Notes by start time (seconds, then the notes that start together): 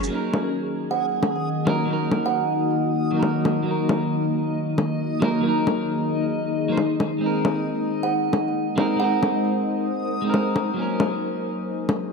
Already playing: F#3 C#4 G#4 A#4
0.04 F#3, shaker
0.10 D#3 A#3 D#4 D#5
0.15 A#4
0.34 A#3, low bongo
0.91 F#5
1.12 D#4
1.23 F#4, low bongo
1.65 F#3 A#3 D#4 A#4, low bongo
1.85 F#3 A#3
1.90 D#4 A#4
2.11 low bongo
2.26 F#5
3.11 F#3 A#3
3.17 D#4 A#4
3.23 low bongo
3.45 low bongo
3.63 F#3 A#3
3.68 D#4 A#4
3.89 low bongo
3.98 D#4
4.78 low bongo
4.89 G#4
5.20 F#3 A#3 D#4, low bongo
5.24 A#4
5.41 F#3 A#3
5.46 D#4 A#4
5.67 low bongo
6.68 F#3 A#3 D#4
6.72 C5
6.77 low bongo
7.00 low bongo
7.18 G#3 C4
7.24 D#4 A#4
7.45 low bongo
8.03 A#4 C5 F#5
8.33 low bongo
8.76 G#3 C4 D#4, low bongo
8.80 A#4
8.96 G#3 C4 F#5
9.02 D#4 A#4
9.23 low bongo
10.22 G#3 C4
10.27 D#4 A#4
10.34 low bongo
10.56 low bongo
10.74 F#3 A#3
10.79 C#4 A#4
11.00 low bongo
11.31 C#4
11.42 G#4
11.89 low bongo